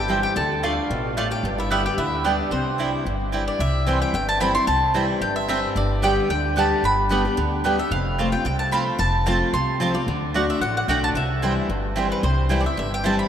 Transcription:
Already playing: upright bass G1, steel-string acoustic guitar G2, resonator guitar played with a steel bar G4, mandolin G5
0.08 steel-string acoustic guitar E3 G3 C4 E4, mandolin C4 E4 C5 G5
0.23 resonator guitar played with a steel bar G4, mandolin G5
0.36 upright bass D2, steel-string acoustic guitar D3, resonator guitar played with a steel bar A4, mandolin A5
0.63 steel-string acoustic guitar D3 A3 D4 F4, mandolin A3 F4 D5 F5 A5, resonator guitar played with a steel bar F4
0.90 upright bass A1, steel-string acoustic guitar B2
1.17 steel-string acoustic guitar A2, mandolin A3 F4 D5 F5 A5, resonator guitar played with a steel bar F4
1.31 resonator guitar played with a steel bar G4, mandolin G5
1.43 upright bass G1, steel-string acoustic guitar G2
1.58 resonator guitar played with a steel bar E4, mandolin E5
1.71 steel-string acoustic guitar D3 G3 B3 G4, mandolin B3 G4 D5 E5 G5, resonator guitar played with a steel bar E4
1.86 resonator guitar played with a steel bar G4, mandolin G5
1.97 upright bass D2, steel-string acoustic guitar D3, resonator guitar played with a steel bar E4, mandolin E5
2.24 steel-string acoustic guitar D3 G3 B3 G4, mandolin B3 G4 D5 G5, resonator guitar played with a steel bar D4
2.51 upright bass C2, steel-string acoustic guitar C3, resonator guitar played with a steel bar C4, mandolin C5
2.78 steel-string acoustic guitar E3 G3 D4 E4, mandolin C4 E4 D5 G5
3.05 upright bass G1, steel-string acoustic guitar G2
3.32 steel-string acoustic guitar E3 G3 D4 E4, mandolin C4 E4 D5 G5
3.48 mandolin D5
3.59 upright bass C2, steel-string acoustic guitar C3, mandolin E5
3.87 steel-string acoustic guitar E3 G3 C4 E4, mandolin C4 E4 C5 G5
4.02 mandolin G5
4.13 upright bass G1, steel-string acoustic guitar G2, mandolin G5
4.29 mandolin A5
4.40 steel-string acoustic guitar E3 G3 C4 E4, mandolin C4 E4 C5 G5 B5
4.55 steel-string acoustic guitar C4 E4, mandolin C6
4.67 upright bass C2, steel-string acoustic guitar C3, mandolin A5
4.94 steel-string acoustic guitar E3 G3 C4 E4, mandolin C4 E4 C5 G5
5.21 upright bass G1, steel-string acoustic guitar G2, mandolin G5
5.36 mandolin E5
5.48 steel-string acoustic guitar E3 G3 C4 E4, mandolin C4 E4 C5 E5 G5
5.75 upright bass G1, steel-string acoustic guitar G2, mandolin D5
6.02 steel-string acoustic guitar D3 G3 B3 G4, mandolin B3 G4 D5 G5
6.29 upright bass D2, steel-string acoustic guitar D3, mandolin G5
6.56 steel-string acoustic guitar D3 G3 B3 G4, mandolin B3 G4 D5 G5 A5
6.83 upright bass G1, steel-string acoustic guitar G2, mandolin B5
7.09 steel-string acoustic guitar D3 G3 B3 G4, mandolin B3 G4 D5 G5
7.25 steel-string acoustic guitar B3 G4
7.37 upright bass D2, steel-string acoustic guitar D3
7.64 steel-string acoustic guitar D3 G3 B3 G4, mandolin B3 G4 D5 G5
7.78 steel-string acoustic guitar B3 G4, mandolin E5
7.91 upright bass F1, steel-string acoustic guitar F2, mandolin F5
8.18 steel-string acoustic guitar F3 A3 C4 F4, mandolin C4 F4 C5 A5
8.32 steel-string acoustic guitar C4 F4, mandolin G5
8.45 upright bass C2, steel-string acoustic guitar C3, mandolin G5
8.59 mandolin A5
8.71 steel-string acoustic guitar F3 A3 C4 F4, mandolin C4 F4 C5 A5 B5
8.99 upright bass F1, steel-string acoustic guitar F2, mandolin A5
9.26 steel-string acoustic guitar F3 A3 C4 F4, mandolin C4 F4 C5 A5
9.53 upright bass C2, steel-string acoustic guitar C3, mandolin C6
9.80 steel-string acoustic guitar F3 A3 C4 F4, mandolin C4 F4 C5 A5
9.94 steel-string acoustic guitar C4 F4, mandolin D5
10.07 upright bass D2, steel-string acoustic guitar D3
10.34 steel-string acoustic guitar D3 A3 D4 F#4, mandolin A3 F#4 D5 F#5
10.50 mandolin E5
10.61 upright bass A1, steel-string acoustic guitar A2, mandolin F#5
10.77 mandolin F#5
10.88 upright bass B1, steel-string acoustic guitar D3 A3 D4 F#4, mandolin A3 F#4 D5 F#5 G5
11.04 mandolin A5
11.15 upright bass C2, steel-string acoustic guitar C3, mandolin E5
11.42 steel-string acoustic guitar E3 G3 C4 E4, mandolin C4 E4 C5 G5
11.69 upright bass G1, steel-string acoustic guitar G2
11.96 steel-string acoustic guitar E3 G3 C4 E4, mandolin C4 E4 C5 G5
12.12 mandolin B4
12.23 upright bass C2, steel-string acoustic guitar C3, mandolin C5
12.49 steel-string acoustic guitar E3 G3 C4 E4, mandolin C4 E4 C5 G5
12.61 steel-string acoustic guitar E4, mandolin D5
12.66 steel-string acoustic guitar C4, mandolin E5
12.77 upright bass G1, steel-string acoustic guitar G2, mandolin E5
12.94 mandolin G5
13.04 steel-string acoustic guitar E3 G3 C4 E4, mandolin C4 E4 C5 G5 A5
13.19 mandolin B5

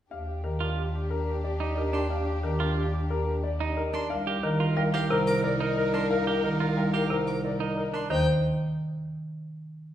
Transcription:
0.10 bass clarinet D#2, string section D4 G4, clarinet G4, grand piano F5
0.27 clarinet G4
0.43 marimba D#3, clarinet G4, grand piano A#4
0.59 clean electric guitar F4, clarinet G4
0.76 clarinet G4
0.94 clarinet G4
1.10 clarinet G4, grand piano A#4
1.27 clarinet G4
1.44 clarinet G4, grand piano D5
1.60 clean electric guitar D#4, clarinet G4
1.77 clarinet G4, grand piano A#4
1.93 clean electric guitar D4, clarinet G4, violin C6
2.10 clarinet G4, grand piano F5
2.27 clarinet G4
2.43 marimba D#3, clarinet G4, grand piano A#4
2.60 clean electric guitar F4, clarinet G4
2.77 clarinet G4
2.93 clarinet G4
3.10 clarinet G4, grand piano A#4
3.27 clarinet G4
3.43 clarinet G4, grand piano D5
3.60 clean electric guitar D#4, clarinet G4
3.76 clarinet G4, grand piano A#4
3.94 clean electric guitar D4, violin C6
4.10 bass clarinet C2, string section D#4 A#4, clarinet A#4, grand piano F5
4.27 clean electric guitar G4, clarinet A#4
4.43 marimba D#3, grand piano A#4, clarinet A#4
4.60 clean electric guitar F4, clarinet A#4
4.76 marimba G3, clarinet A#4, grand piano F5
4.94 clean electric guitar G4, clarinet A#4, violin F5
5.10 marimba C3, grand piano A#4, clarinet A#4
5.27 clarinet A#4, violin D6
5.44 clarinet A#4, grand piano D5
5.60 clean electric guitar D#4, clarinet A#4
5.77 grand piano A#4, clarinet A#4
5.94 clean electric guitar D4, clarinet A#4, violin C6
6.10 clarinet A#4, grand piano F5
6.27 clean electric guitar G4, clarinet A#4
6.44 marimba D#3, clarinet A#4, grand piano A#4
6.60 clean electric guitar F4, clarinet A#4
6.77 marimba G3, clarinet A#4, grand piano F5
6.93 clean electric guitar G4, clarinet A#4, violin F5
7.10 marimba C3, clarinet A#4, grand piano A#4
7.27 clarinet A#4, violin D6
7.43 clarinet A#4, grand piano D5
7.60 clean electric guitar D#4, clarinet A#4
7.77 clarinet A#4, grand piano A#4
7.94 clean electric guitar D4, violin C6
8.10 bass clarinet D#2, marimba D#3, clean electric guitar D#4, grand piano C5, violin G5

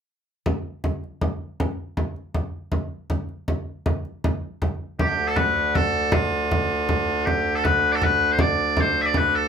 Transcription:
0.46 frame drum
0.84 frame drum
1.04 frame drum
1.21 frame drum
1.60 frame drum
1.97 frame drum
2.16 frame drum
2.34 frame drum
2.72 frame drum
3.10 frame drum
3.29 frame drum
3.48 frame drum
3.86 frame drum
4.05 frame drum
4.24 frame drum
4.62 frame drum
4.99 bagpipes D2 D3 G4, frame drum
5.28 bagpipes A4
5.36 bagpipes B4, frame drum
5.56 frame drum
5.75 bagpipes A4, frame drum
5.94 frame drum
6.12 bagpipes F4, frame drum
6.51 frame drum
6.70 frame drum
6.89 frame drum
7.08 frame drum
7.25 bagpipes G4, frame drum
7.55 bagpipes A4
7.64 bagpipes B4, frame drum
7.84 frame drum
7.92 bagpipes A4 D5
8.02 bagpipes B4, frame drum
8.20 frame drum
8.32 bagpipes C5
8.39 bagpipes D5, frame drum
8.58 frame drum
8.77 bagpipes C5, frame drum
9.02 bagpipes E5
9.06 bagpipes D5
9.14 bagpipes B4, frame drum
9.35 bagpipes A4

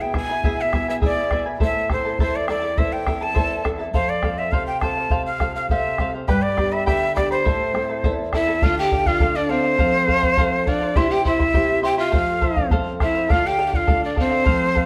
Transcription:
Already playing: nylon-string guitar B2, charango E4 G#4 B4 E5 G#5
0.01 quena G5
0.13 nylon-string guitar B3 E4 G#4, charango E4 B4 E5 G#5, bombo rim, bombo low
0.18 quena G#5
0.30 charango E4 B4 G#5
0.43 nylon-string guitar B2, charango E4 G#4 B4 E5 G#5, bombo low
0.61 quena E5
0.73 nylon-string guitar B3 E4 G#4, charango E4 B4 E5 G#5, bombo rim, bombo low
0.88 charango E4 B4 G#5, quena E5
1.02 nylon-string guitar B2, charango E4 G#4 B4 E5 G#5, quena D5, bombo low
1.31 nylon-string guitar B3 E4 G#4, charango E4 B4 E5 G#5, bombo rim, bombo low
1.46 charango E4 B4 G#5
1.60 nylon-string guitar A2, charango E4 A4 C5 E5 A5, quena E5, bombo low
1.90 nylon-string guitar C4 E4 A4, charango E4 A4 E5 A5, quena C5, bombo rim, bombo low
2.05 charango E4 A4 A5
2.19 nylon-string guitar E2, charango E4 A4 C5 E5 A5, quena C5, bombo low
2.36 quena D5
2.48 nylon-string guitar C4 E4 A4, charango E4 A4 E5 A5, quena D5, bombo rim
2.63 charango E4 A4 A5
2.78 nylon-string guitar E2, charango E4 A4 C5 E5 A5, quena E5, bombo low
2.93 quena G5
3.06 nylon-string guitar C4 E4 A4, charango E4 A4 E5 A5, bombo rim, bombo low
3.21 charango E4 A4 A5, quena A5
3.34 nylon-string guitar E2, charango E4 A4 C5 E5 A5, bombo low
3.64 nylon-string guitar C4 E4 A4, charango E4 A4 E5 A5, bombo rim, bombo low
3.79 charango E4 A4 A5
3.94 nylon-string guitar F2, charango A4 C5 F5, quena C5, bombo low
4.09 quena D5
4.23 nylon-string guitar C4 F4 A4, charango A4 C5 F5, bombo rim, bombo low
4.38 charango C5 F5, quena E5
4.52 nylon-string guitar C3, charango A4 C5 F5, quena F5, bombo low
4.67 quena G5
4.81 nylon-string guitar C4 F4 A4, charango A4 C5 F5, quena A5, bombo rim, bombo low
4.97 charango C5 F5
5.10 nylon-string guitar C3, charango A4 C5 F5, bombo low
5.26 quena F5
5.40 nylon-string guitar C4 F4 A4, charango A4 C5 F5, bombo rim, bombo low
5.54 charango C5 F5, quena F5
5.69 nylon-string guitar C3, charango A4 C5 F5, quena E5, bombo low
5.98 nylon-string guitar C4 F4 A4, charango A4 C5 F5, bombo rim, bombo low
6.14 charango C5 F5
6.28 nylon-string guitar G2, charango G4 B4 D5 G5 B5, quena B4, bombo low
6.42 quena D5
6.57 nylon-string guitar B3 D4 G4, charango B4 D5 G5 B5, bombo rim, bombo low
6.72 charango B4 D5 B5, quena E5
6.86 nylon-string guitar D3, charango G4 B4 D5 G5 B5, quena E5, bombo low
7.16 nylon-string guitar B3 D4 G4, charango B4 D5 G5 B5, quena D5, bombo rim, bombo low
7.31 charango B4 D5 B5, quena C5
7.45 nylon-string guitar A2, charango E4 A4 C5 E5 A5, bombo low
7.74 nylon-string guitar C4 E4 A4, charango E4 A4 E5 A5, bombo rim
7.90 charango E4 A4 A5
8.04 nylon-string guitar E2, charango E4 A4 C5 E5 A5, bombo low
8.33 nylon-string guitar C4 E4 A4, charango E4 A4 E5 A5, pan flute E4, quena E5, bombo rim, bombo low
8.48 charango E4 A4 A5
8.61 nylon-string guitar D3, pan flute F4, charango A4 D5 F5, quena F5, bombo low
8.78 pan flute G4, quena G5
8.91 charango A4 D5 F5, bombo low
9.06 pan flute F4, charango D5 F5, quena F5, bombo low
9.20 nylon-string guitar D4 F4 A4, charango A4 D5 F5, bombo low
9.36 pan flute D4, quena D5
9.49 pan flute C4, charango A4 D5 F5, quena C5
9.64 charango D5 F5
9.78 nylon-string guitar F3, charango A4 C5 F5, bombo low
10.07 charango A4 C5 F5, bombo low
10.23 charango C5 F5, bombo low
10.37 nylon-string guitar C4 F4 A4, charango A4 C5 F5, bombo low
10.66 pan flute D4, charango A4 C5 F5, quena D5, bombo low
10.81 charango C5 F5
10.96 nylon-string guitar C3, charango E4 G4 C5 E5 C6, pan flute E4, quena E5, bombo low
11.10 pan flute G4, quena G5
11.24 pan flute E4, charango E4 C5 E5 C6, quena E5, bombo low
11.39 charango E4 E5 C6, bombo low
11.54 nylon-string guitar C4 E4 G4, charango E4 G4 C5 E5 C6, bombo low
11.82 charango E4 C5 E5 C6, pan flute G4, quena G5
11.97 charango E4 E5 C6, pan flute F4, quena F5
12.11 nylon-string guitar F2, charango A4 C5 F5, bombo low
12.41 charango A4 C5 F5, bombo low
12.56 charango C5 F5, bombo low
12.71 nylon-string guitar C4 F4 A4, charango A4 C5 F5, bombo low
13.00 pan flute E4, charango A4 C5 F5, quena E5, bombo rim, bombo low
13.14 charango C5 F5
13.29 nylon-string guitar D3, pan flute F4, charango A4 D5 F5, quena F5, bombo low
13.46 pan flute G4, quena G5
13.58 charango A4 D5 F5
13.67 pan flute G4, quena G5
13.73 pan flute F4, charango D5 F5, quena F5, bombo low
13.87 nylon-string guitar D4 F4 A4, charango A4 D5 F5, bombo low
14.05 pan flute D4, quena D5
14.16 pan flute C4, charango A4 D5 F5, quena C5, bombo low
14.30 charango D5 F5
14.44 nylon-string guitar F3, charango A4 C5 F5, bombo low
14.75 charango A4 C5 F5, bombo low

